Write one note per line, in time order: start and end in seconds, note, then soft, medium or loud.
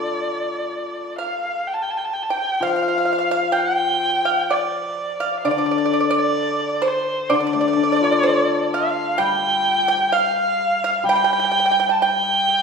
0.00 0.68 D3 medium
0.00 0.21 A3 soft
0.00 0.70 D4 soft
0.00 1.17 F4 soft
0.00 1.67 A4 soft
0.00 1.18 D5 medium
1.18 1.63 F5 medium
1.18 1.68 F5 medium
1.67 1.75 G5 medium
1.74 1.84 A5 medium
1.82 1.92 G5 medium
1.90 1.99 A5 medium
1.97 2.06 G5 medium
2.05 2.14 A5 medium
2.13 2.24 G5 medium
2.23 2.32 A5 medium
2.30 2.60 G5 medium
2.30 2.66 G5 loud
2.60 5.46 F3 medium
2.60 2.66 F5 medium
2.60 3.61 F5 medium
2.67 2.75 F5 medium
2.76 2.81 F5 medium
2.82 2.87 F5 soft
2.88 2.97 F5 medium
2.98 3.04 F5 soft
3.05 3.11 F5 medium
3.13 3.17 F5 medium
3.19 3.27 F5 medium
3.31 3.52 F5 medium
3.52 4.22 G5 medium
3.60 4.54 G5 loud
4.25 4.49 F5 medium
4.50 5.18 D5 medium
4.50 5.39 D5 medium
5.20 5.43 F5 medium
5.39 5.49 F5 medium
5.45 7.29 D3 medium
5.45 5.50 D5 medium
5.45 6.17 D5 loud
5.51 5.57 D5 medium
5.58 5.65 D5 medium
5.66 5.70 D5 soft
5.71 5.77 D5 medium
5.78 5.84 D5 soft
5.85 5.92 D5 medium
5.93 5.99 D5 soft
6.00 6.09 D5 medium
6.10 6.79 D5 medium
6.18 6.89 D5 loud
6.82 7.27 C5 medium
6.88 7.35 C5 medium
7.30 10.11 D3 medium
7.30 7.37 D5 medium
7.34 8.75 D5 loud
7.40 7.45 D5 medium
7.47 7.52 D5 medium
7.53 9.41 A3 soft
7.53 7.60 D5 soft
7.61 7.67 D5 medium
7.68 7.72 D5 soft
7.73 9.64 D4 medium
7.73 7.81 D5 medium
7.83 7.90 D5 medium
7.92 7.95 D5 medium
7.92 8.03 D5 medium
8.01 9.88 F4 medium
8.01 8.11 D5 medium
8.12 8.19 D5 medium
8.23 10.12 A4 medium
8.23 8.68 D5 medium
8.74 9.21 F5 loud
8.74 9.16 F5 medium
9.18 11.02 G3 medium
9.18 9.84 G5 loud
9.18 10.14 G5 loud
9.88 10.10 G5 loud
10.12 10.79 F5 medium
10.12 11.06 F5 loud
10.84 11.05 F5 medium
11.04 12.62 G3 medium
11.04 11.90 G5 loud
11.09 11.14 G5 medium
11.16 11.21 G5 medium
11.24 11.29 G5 medium
11.33 11.37 G5 medium
11.39 11.43 G5 medium
11.45 11.50 G5 medium
11.51 11.57 G5 medium
11.60 11.64 G5 medium
11.66 11.70 G5 medium
11.71 11.78 G5 medium
11.80 11.86 G5 medium
11.89 11.95 G5 medium
11.89 12.03 A5 medium
12.02 12.62 G5 loud
12.02 12.62 G5 medium